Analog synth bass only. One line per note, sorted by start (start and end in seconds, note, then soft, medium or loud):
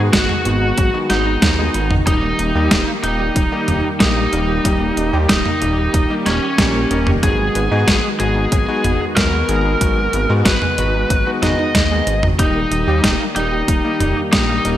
0.00 0.11 G#2 loud
0.13 0.27 G#1 medium
0.46 0.73 G#1 medium
0.78 0.91 G#1 medium
1.10 1.37 G#1 medium
1.42 1.69 D#2 loud
1.75 2.02 G#1 medium
2.07 2.34 D#1 loud
2.39 2.53 D#1 loud
2.55 2.69 D#2 loud
2.71 2.85 D#1 loud
3.04 3.31 D#1 medium
3.36 3.49 D#1 medium
3.68 3.82 D#1 medium
4.00 4.27 A#1 medium
4.33 4.60 D#1 loud
4.65 4.92 D#1 loud
4.97 5.11 D#1 loud
5.13 5.27 D#2 loud
5.29 5.43 D#1 loud
5.62 5.89 D#1 medium
5.94 6.07 D#1 medium
6.26 6.40 D#1 medium
6.58 6.86 A#1 medium
6.91 7.18 D#1 loud
7.23 7.50 G#1 loud
7.55 7.69 G#1 loud
7.71 7.85 G#2 loud
7.88 8.01 G#1 medium
8.20 8.47 G#1 medium
8.52 8.66 G#1 medium
8.84 8.98 G#1 medium
9.16 9.44 D#2 medium
9.49 9.76 G#1 loud
9.81 10.08 G#1 loud
10.13 10.27 G#1 loud
10.30 10.43 G#2 loud
10.46 10.59 G#1 loud
10.78 11.05 G#1 medium
11.10 11.24 G#1 medium
11.42 11.56 G#1 medium
11.75 12.02 D#2 medium
12.07 12.34 G#1 loud
12.39 12.66 D#1 loud
12.71 12.85 D#1 medium
12.87 13.01 D#2 loud
13.04 13.17 D#1 loud
13.36 13.63 D#1 medium
13.68 13.82 D#1 medium
14.00 14.14 D#1 medium
14.33 14.60 A#1 medium
14.65 14.77 D#1 loud